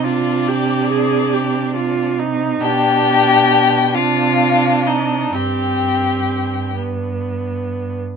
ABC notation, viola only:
X:1
M:6/8
L:1/8
Q:3/8=44
K:Cm
V:1 name="Viola"
F G A G F E | D3 D3 | C3 =B,3 |]